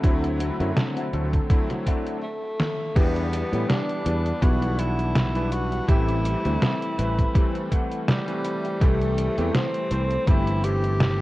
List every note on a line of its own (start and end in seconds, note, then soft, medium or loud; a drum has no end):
0.00 0.49 D2 medium
0.00 0.55 D3 loud
0.00 0.55 F#3 medium
0.00 0.55 A3 medium
0.00 0.26 C4 medium
0.00 0.55 C4 medium
0.00 0.27 E4 medium
0.00 0.27 F#4 loud
0.00 kick loud
0.00 closed hi-hat medium
0.04 0.55 E4 loud
0.24 closed hi-hat soft
0.39 0.68 C4 loud
0.39 0.68 E4 medium
0.39 0.69 F#4 loud
0.39 closed hi-hat medium
0.59 0.71 F#2 medium
0.59 1.09 D3 medium
0.59 1.09 F#3 medium
0.59 1.09 A3 medium
0.59 1.10 C4 medium
0.59 1.10 E4 medium
0.59 closed hi-hat soft
0.77 snare loud
0.77 closed hi-hat medium
0.96 1.23 C4 medium
0.96 1.23 E4 medium
0.96 1.23 F#4 medium
0.96 closed hi-hat soft
1.13 1.38 D2 medium
1.13 1.45 D3 medium
1.13 1.46 F#3 medium
1.13 1.46 A3 medium
1.13 1.46 C4 medium
1.13 1.46 A4 medium
1.13 closed hi-hat medium
1.33 kick medium
1.33 closed hi-hat soft
1.49 1.82 D3 medium
1.49 1.82 F#3 medium
1.49 1.83 A3 medium
1.49 1.83 C4 medium
1.49 1.83 E4 loud
1.49 muted clean electric guitar stroke soft
1.49 kick loud
1.49 closed hi-hat medium
1.70 snare soft
1.70 closed hi-hat soft
1.86 2.23 D3 medium
1.86 2.23 F#3 medium
1.86 2.23 A3 medium
1.86 2.14 C4 loud
1.86 2.23 C4 medium
1.86 2.24 D4 medium
1.86 2.15 E4 loud
1.86 2.15 F#4 loud
1.86 kick medium
1.86 closed hi-hat medium
2.06 closed hi-hat soft
2.23 2.98 A3 medium
2.60 snare medium
2.95 3.42 E2 medium
2.95 3.47 E3 loud
2.95 3.48 G3 medium
2.95 3.24 B3 loud
2.95 3.71 B3 loud
2.95 3.48 B3 medium
2.95 3.24 D4 loud
2.95 3.48 D4 medium
2.95 3.24 E4 medium
2.95 3.25 G4 loud
2.95 3.48 G4 loud
2.95 kick loud
2.95 closed hi-hat medium
2.95 crash loud
2.95 cabasa soft
3.16 closed hi-hat soft
3.33 closed hi-hat loud
3.33 cabasa medium
3.52 3.64 A2 medium
3.52 4.01 E3 medium
3.52 4.02 G3 medium
3.52 3.79 B3 medium
3.52 4.02 B3 medium
3.52 3.79 D4 medium
3.52 4.02 D4 medium
3.52 3.79 E4 medium
3.52 3.80 G4 loud
3.52 4.02 G4 medium
3.52 closed hi-hat soft
3.52 cabasa soft
3.69 4.44 D4 loud
3.69 snare loud
3.69 closed hi-hat medium
3.69 cabasa soft
3.89 closed hi-hat soft
4.05 4.31 E2 medium
4.05 4.38 E3 medium
4.05 4.38 G3 medium
4.05 4.38 B3 medium
4.05 4.39 D4 medium
4.05 4.39 B4 medium
4.05 muted clean electric guitar stroke soft
4.05 closed hi-hat medium
4.05 cabasa medium
4.26 closed hi-hat soft
4.26 cabasa soft
4.41 5.80 B1 medium
4.41 4.74 E3 medium
4.41 4.75 G3 medium
4.41 4.75 B3 medium
4.41 4.62 B3 medium
4.41 4.62 D4 medium
4.41 4.75 D4 medium
4.41 4.75 E4 loud
4.41 4.63 E4 medium
4.41 4.81 F#4 loud
4.41 4.63 G4 medium
4.41 kick loud
4.41 closed hi-hat medium
4.41 cabasa soft
4.62 closed hi-hat soft
4.78 5.30 E3 medium
4.78 5.30 G3 medium
4.78 5.31 B3 medium
4.78 5.31 D4 medium
4.78 5.54 E4 loud
4.78 5.31 F#5 medium
4.78 muted clean electric guitar stroke soft
4.78 closed hi-hat medium
4.78 cabasa medium
4.99 closed hi-hat soft
4.99 cabasa soft
5.16 snare loud
5.16 closed hi-hat medium
5.16 cabasa soft
5.35 5.84 E3 medium
5.35 5.85 G3 medium
5.35 5.85 B3 medium
5.35 5.85 D4 medium
5.35 5.85 B4 medium
5.35 closed hi-hat soft
5.52 5.90 F#4 loud
5.52 muted clean electric guitar stroke soft
5.52 closed hi-hat medium
5.52 cabasa medium
5.72 muted clean electric guitar stroke medium
5.72 closed hi-hat soft
5.72 cabasa soft
5.88 6.34 A1 loud
5.88 6.40 E3 loud
5.88 6.40 G3 medium
5.88 6.17 A3 loud
5.88 6.40 A3 medium
5.88 6.17 C4 medium
5.88 6.41 C4 medium
5.88 7.82 E4 loud
5.88 6.17 E4 medium
5.88 6.17 G4 loud
5.88 6.41 G4 loud
5.88 kick loud
5.88 closed hi-hat medium
5.88 cabasa soft
6.09 closed hi-hat soft
6.25 closed hi-hat loud
6.25 cabasa medium
6.44 6.56 D2 medium
6.44 6.94 E3 medium
6.44 6.94 G3 medium
6.44 6.72 A3 medium
6.44 6.94 A3 medium
6.44 6.95 C4 medium
6.44 6.72 C4 medium
6.44 6.72 E4 medium
6.44 6.72 F#4 loud
6.44 closed hi-hat soft
6.44 cabasa soft
6.62 snare loud
6.62 closed hi-hat medium
6.62 cabasa soft
6.82 closed hi-hat soft
6.98 7.24 A1 medium
6.98 7.31 E3 medium
6.98 7.31 G3 medium
6.98 7.31 A3 medium
6.98 7.31 C4 medium
6.98 7.32 B4 medium
6.98 muted clean electric guitar stroke soft
6.98 closed hi-hat medium
6.98 cabasa medium
7.18 kick medium
7.18 closed hi-hat soft
7.18 cabasa soft
7.34 7.67 E3 medium
7.34 7.67 G3 medium
7.34 7.55 A3 medium
7.34 7.68 A3 medium
7.34 7.55 C4 medium
7.34 7.68 C4 medium
7.34 7.55 E4 medium
7.34 7.55 G4 loud
7.34 kick loud
7.34 closed hi-hat medium
7.34 cabasa soft
7.55 closed hi-hat soft
7.71 8.23 E3 medium
7.71 8.23 G3 medium
7.71 8.23 A3 medium
7.71 8.23 C4 medium
7.71 8.24 F#5 medium
7.71 muted clean electric guitar stroke soft
7.71 kick medium
7.71 closed hi-hat medium
7.71 cabasa medium
7.92 closed hi-hat soft
7.92 cabasa soft
8.08 8.83 G3 loud
8.08 snare loud
8.08 closed hi-hat medium
8.08 cabasa soft
8.27 8.77 E3 medium
8.27 8.77 G3 medium
8.27 8.77 A3 medium
8.27 8.78 C4 medium
8.27 8.78 B4 medium
8.27 closed hi-hat soft
8.44 muted clean electric guitar stroke soft
8.44 closed hi-hat medium
8.44 cabasa medium
8.64 muted clean electric guitar stroke medium
8.64 closed hi-hat soft
8.64 cabasa soft
8.80 9.27 C2 loud
8.80 9.33 E3 loud
8.80 9.33 G3 medium
8.80 9.09 A3 loud
8.80 9.33 A3 medium
8.80 9.56 A3 loud
8.80 9.09 C4 medium
8.80 9.33 C4 medium
8.80 9.10 E4 loud
8.80 9.10 G4 loud
8.80 9.33 G4 loud
8.80 kick loud
8.80 closed hi-hat medium
8.80 cabasa soft
9.01 closed hi-hat soft
9.18 closed hi-hat loud
9.18 cabasa medium
9.37 9.49 E2 medium
9.37 9.87 E3 medium
9.37 9.87 G3 medium
9.37 9.64 A3 medium
9.37 9.87 A3 medium
9.37 9.64 C4 medium
9.37 9.87 C4 medium
9.37 9.65 E4 medium
9.37 9.65 G4 loud
9.37 9.88 G4 medium
9.37 closed hi-hat soft
9.37 cabasa soft
9.54 10.29 C4 loud
9.54 snare loud
9.54 closed hi-hat medium
9.54 cabasa soft
9.74 closed hi-hat soft
9.90 10.16 C2 medium
9.90 10.23 E3 medium
9.90 10.24 G3 medium
9.90 10.24 A3 medium
9.90 10.24 C4 medium
9.90 10.24 C5 medium
9.90 muted clean electric guitar stroke soft
9.90 closed hi-hat medium
9.90 cabasa medium
10.11 closed hi-hat soft
10.11 cabasa soft
10.26 11.22 G1 medium
10.26 10.60 E3 medium
10.26 10.60 G3 medium
10.26 10.47 A3 medium
10.26 10.60 A3 medium
10.26 10.47 C4 medium
10.26 10.61 C4 medium
10.26 10.66 E4 loud
10.26 10.48 E4 medium
10.26 10.48 G4 loud
10.26 10.61 G4 loud
10.26 kick loud
10.26 closed hi-hat medium
10.26 cabasa soft
10.47 closed hi-hat soft
10.63 11.16 E3 medium
10.63 11.16 G3 medium
10.63 11.16 A3 medium
10.63 11.16 C4 medium
10.63 11.16 E4 medium
10.63 11.22 G4 loud
10.63 muted clean electric guitar stroke soft
10.63 closed hi-hat medium
10.63 cabasa medium
10.84 closed hi-hat soft
10.84 cabasa soft
11.01 snare loud
11.01 closed hi-hat medium
11.01 cabasa soft